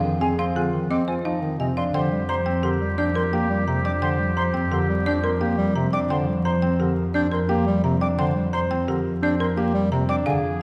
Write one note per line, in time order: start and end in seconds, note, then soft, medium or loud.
0.00 1.83 F2 medium
0.00 0.16 D#3 medium
0.21 0.34 C4 medium
0.21 0.43 G#4 medium
0.21 0.28 G#5 medium
0.21 0.43 G#5 medium
0.38 0.61 C4 medium
0.38 0.61 F5 medium
0.38 0.45 C6 medium
0.55 0.68 D3 medium
0.55 0.78 F4 medium
0.55 0.78 G#4 medium
0.55 0.62 G#5 medium
0.73 0.86 D#3 medium
0.90 1.03 C4 medium
0.90 1.13 C4 medium
0.90 1.13 D#5 medium
0.90 0.97 D6 medium
1.08 1.30 F4 medium
1.08 1.30 C5 medium
1.08 1.14 G#5 medium
1.25 1.38 F3 medium
1.25 1.47 D#4 medium
1.25 1.47 F5 medium
1.42 1.55 D#3 medium
1.59 1.72 C3 medium
1.59 1.82 C4 medium
1.59 1.66 D#5 medium
1.59 1.82 G#5 medium
1.77 1.99 D4 medium
1.77 1.99 F5 medium
1.77 1.83 C6 medium
1.94 10.16 F2 medium
1.94 2.07 D3 medium
1.94 5.89 G4 medium
1.94 2.17 C5 medium
1.94 2.17 G5 medium
1.94 2.01 C6 medium
2.12 2.24 G3 medium
2.29 2.51 C5 medium
2.29 2.51 A#5 medium
2.29 2.35 C6 medium
2.46 2.69 C4 medium
2.46 2.69 G5 medium
2.63 2.77 D3 medium
2.63 2.86 G4 medium
2.63 2.86 A#4 medium
2.63 2.70 C6 medium
2.81 2.94 G3 medium
2.98 3.21 C4 medium
2.98 3.11 D4 medium
2.98 3.21 D5 medium
2.98 3.05 G6 medium
3.15 3.38 A#4 medium
3.15 3.22 C6 medium
3.33 3.46 A#3 medium
3.33 3.55 G4 medium
3.33 3.55 G5 medium
3.50 3.63 G3 medium
3.67 3.80 C3 medium
3.67 3.90 C4 medium
3.67 3.90 A#5 medium
3.85 4.07 D4 medium
3.85 4.01 G5 medium
3.85 3.91 D6 medium
4.02 4.15 D3 medium
4.02 4.25 C5 medium
4.02 4.25 G5 medium
4.02 4.09 C6 medium
4.20 4.32 G3 medium
4.37 4.59 C5 medium
4.37 4.59 A#5 medium
4.37 4.43 C6 medium
4.54 4.77 C4 medium
4.54 4.77 G5 medium
4.71 4.84 D3 medium
4.71 4.94 G4 medium
4.71 4.94 A#4 medium
4.71 4.78 C6 medium
4.89 5.02 G3 medium
5.06 5.29 C4 medium
5.06 5.19 D4 medium
5.06 5.29 D5 loud
5.06 5.13 G6 medium
5.24 5.46 A#4 medium
5.24 5.30 C6 medium
5.41 5.54 A#3 medium
5.41 5.63 G4 medium
5.41 5.63 G5 medium
5.58 5.71 G3 medium
5.76 5.89 C3 medium
5.76 5.98 C4 medium
5.76 5.98 A#5 medium
5.93 6.15 D4 medium
5.93 6.09 G5 medium
5.93 5.99 D6 medium
6.10 6.23 D3 medium
6.10 6.33 C5 medium
6.10 6.33 G5 medium
6.10 6.17 C6 medium
6.28 6.41 G3 medium
6.45 6.68 C5 medium
6.45 6.68 A#5 medium
6.45 6.52 C6 medium
6.62 6.85 C4 medium
6.62 6.85 G5 medium
6.80 6.93 D3 medium
6.80 7.02 G4 medium
6.80 7.02 A#4 medium
7.14 7.37 C4 medium
7.14 7.28 D4 medium
7.14 7.37 D5 medium
7.14 7.21 G6 medium
7.31 7.54 A#4 medium
7.31 7.38 C6 medium
7.49 7.62 A#3 medium
7.49 7.72 G4 loud
7.49 7.71 G5 medium
7.67 7.80 G3 medium
7.84 7.97 C3 medium
7.84 8.06 C4 medium
7.84 8.06 A#5 medium
8.01 8.24 D4 medium
8.01 8.18 G5 medium
8.01 8.08 D6 medium
8.18 8.31 D3 medium
8.18 8.41 C5 medium
8.18 8.41 G5 medium
8.18 8.25 C6 medium
8.36 8.49 G3 medium
8.53 8.76 C5 medium
8.53 8.76 A#5 medium
8.53 8.60 C6 loud
8.70 8.93 C4 medium
8.70 8.93 G5 medium
8.88 9.01 D3 medium
8.88 9.10 G4 medium
8.88 9.10 A#4 medium
9.22 9.45 C4 medium
9.22 9.35 D4 medium
9.22 9.45 D5 medium
9.22 9.29 G6 medium
9.40 9.62 A#4 medium
9.40 9.46 C6 medium
9.57 9.70 A#3 medium
9.57 9.80 G4 medium
9.57 9.80 G5 medium
9.74 9.87 G3 medium
9.92 10.05 C3 medium
9.92 10.14 C4 medium
9.92 10.14 A#5 medium
10.09 10.32 D4 medium
10.09 10.32 G5 medium
10.09 10.16 D6 medium
10.26 10.62 F2 medium
10.26 10.39 D3 medium
10.26 10.62 G#4 medium
10.26 10.49 G#4 medium
10.26 10.49 F5 medium
10.26 10.33 G#5 medium